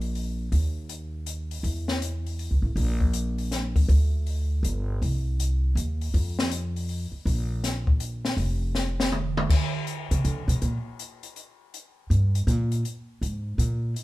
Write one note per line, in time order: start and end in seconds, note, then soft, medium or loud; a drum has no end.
0.00 0.47 A#1 medium
0.00 open hi-hat soft
0.15 open hi-hat soft
0.52 1.60 D#2 medium
0.52 kick soft
0.52 open hi-hat soft
0.89 closed hi-hat soft
1.26 closed hi-hat soft
1.51 open hi-hat soft
1.63 2.47 E2 medium
1.63 kick soft
1.63 open hi-hat soft
1.88 snare soft
2.02 closed hi-hat soft
2.26 open hi-hat soft
2.39 open hi-hat soft
2.51 2.62 C#2 medium
2.62 2.75 A1 medium
2.76 3.84 A#1 medium
2.76 kick soft
2.76 open hi-hat soft
3.01 kick soft
3.13 closed hi-hat soft
3.38 open hi-hat soft
3.51 snare soft
3.51 closed hi-hat soft
3.76 kick medium
3.76 open hi-hat soft
3.88 4.60 D2 medium
3.88 kick soft
3.88 open hi-hat soft
4.26 open hi-hat soft
4.63 4.98 G1 medium
4.63 closed hi-hat soft
5.02 5.72 C2 medium
5.02 kick soft
5.02 open hi-hat soft
5.40 closed hi-hat soft
5.75 6.10 D#2 medium
5.75 closed hi-hat soft
6.01 open hi-hat soft
6.14 7.09 F2 medium
6.14 kick soft
6.14 open hi-hat soft
6.39 snare medium
6.51 closed hi-hat soft
6.76 open hi-hat soft
6.89 open hi-hat soft
7.12 muted upright bass stroke soft
7.25 8.33 A#1 medium
7.25 kick soft
7.25 open hi-hat soft
7.64 snare soft
7.64 closed hi-hat soft
7.87 kick medium
8.00 closed hi-hat soft
8.25 snare soft
8.37 9.45 F1 medium
8.37 kick soft
8.37 open hi-hat soft
8.75 snare soft
9.00 snare medium
9.12 mid tom medium
9.37 mid tom medium
9.50 kick medium
9.50 crash medium
9.87 closed hi-hat soft
10.11 10.23 C#3 medium
10.11 closed hi-hat soft
10.25 10.47 D3 medium
10.25 closed hi-hat soft
10.48 10.60 B2 medium
10.48 closed hi-hat soft
10.62 10.76 A#2 medium
10.62 closed hi-hat soft
10.99 closed hi-hat soft
11.23 closed hi-hat soft
11.36 closed hi-hat soft
11.74 closed hi-hat soft
12.10 12.44 G2 medium
12.10 closed hi-hat soft
12.35 closed hi-hat soft
12.47 12.82 A#2 medium
12.47 closed hi-hat soft
12.72 closed hi-hat soft
12.85 closed hi-hat soft
13.22 13.56 G#2 medium
13.22 closed hi-hat soft
13.58 13.93 A#2 medium
13.58 closed hi-hat soft
13.96 closed hi-hat soft